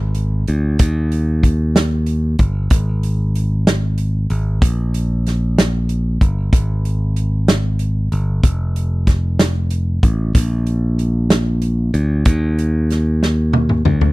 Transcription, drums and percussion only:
0.15 closed hi-hat
0.48 closed hi-hat
0.79 kick, closed hi-hat
1.12 closed hi-hat
1.43 kick, closed hi-hat
1.76 snare, closed hi-hat
2.07 closed hi-hat
2.39 kick, closed hi-hat
2.70 kick, closed hi-hat
3.03 closed hi-hat
3.36 closed hi-hat
3.67 snare, closed hi-hat
3.98 closed hi-hat
4.30 closed hi-hat
4.62 kick, closed hi-hat
4.94 closed hi-hat
5.27 snare, closed hi-hat
5.58 snare, closed hi-hat
5.89 closed hi-hat
6.21 kick, closed hi-hat
6.53 kick, closed hi-hat
6.85 closed hi-hat
7.16 closed hi-hat
7.48 snare, closed hi-hat
7.79 closed hi-hat
8.12 closed hi-hat
8.44 kick, closed hi-hat
8.76 closed hi-hat
9.07 kick, snare, closed hi-hat
9.39 snare, closed hi-hat
9.71 closed hi-hat
10.03 kick, closed hi-hat
10.35 kick, closed hi-hat
10.67 closed hi-hat
10.99 closed hi-hat
11.30 snare, closed hi-hat
11.62 closed hi-hat
11.94 closed hi-hat
12.25 kick, closed hi-hat
12.59 closed hi-hat
12.90 snare, closed hi-hat
13.23 snare
13.53 high tom
13.69 mid tom
13.85 mid tom
14.01 floor tom

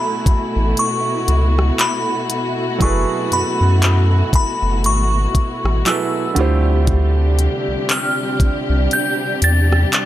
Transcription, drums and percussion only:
0.26 kick, closed hi-hat
0.77 closed hi-hat
1.28 closed hi-hat
1.59 cross-stick
1.79 clap, closed hi-hat
2.30 closed hi-hat
2.81 kick, closed hi-hat
3.32 closed hi-hat
3.82 clap, closed hi-hat
4.33 kick, closed hi-hat
4.84 closed hi-hat
5.35 kick, closed hi-hat
5.65 cross-stick
5.86 clap, closed hi-hat
6.36 closed hi-hat
6.87 kick, closed hi-hat
7.39 closed hi-hat
7.89 clap, closed hi-hat
8.40 kick, closed hi-hat
8.91 closed hi-hat
9.42 closed hi-hat
9.72 cross-stick
9.93 clap, closed hi-hat

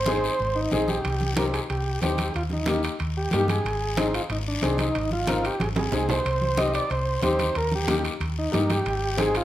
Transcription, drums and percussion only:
0.06 high conga, short guiro
0.24 short guiro
0.39 high conga, long guiro
0.71 high conga, short guiro
0.88 high conga, short guiro
1.04 high conga, high timbale, long guiro
1.21 high conga
1.37 high conga, high timbale, short guiro
1.54 high timbale, short guiro
1.70 high conga, high timbale, long guiro
2.02 high conga, high timbale, low timbale, short guiro
2.18 high conga, high timbale, short guiro
2.34 high conga, high timbale, long guiro
2.50 high conga
2.66 high conga, high timbale, short guiro
2.83 high timbale, short guiro
2.99 high conga, high timbale, long guiro
3.31 high conga, high timbale, low timbale, short guiro
3.48 high conga, high timbale, short guiro
3.65 high conga, high timbale, long guiro
3.97 high conga, high timbale, short guiro
4.14 high timbale, short guiro
4.30 high conga, high timbale, long guiro
4.62 high conga, high timbale, short guiro
4.78 high conga, high timbale, short guiro
4.95 high conga, high timbale, long guiro
5.11 high conga
5.27 high conga, high timbale, short guiro
5.45 high timbale, short guiro
5.60 high conga, high timbale, long guiro
5.76 high conga, high timbale
5.92 low conga, high timbale, short guiro
6.09 low conga, low timbale, short guiro
6.25 high conga, high timbale, long guiro
6.41 high conga
6.57 high conga, high timbale, short guiro
6.74 high timbale, short guiro
6.90 high conga, high timbale, long guiro
7.22 high conga, high timbale, short guiro
7.39 high conga, high timbale, short guiro
7.55 high conga, high timbale, long guiro
7.72 high conga
7.88 high conga, high timbale, short guiro
8.04 high timbale, short guiro
8.21 high conga, high timbale, long guiro
8.53 high conga, high timbale, low timbale, short guiro
8.70 high conga, high timbale, short guiro
8.86 high conga, high timbale, long guiro
9.18 high conga, high timbale, short guiro
9.35 high timbale, short guiro

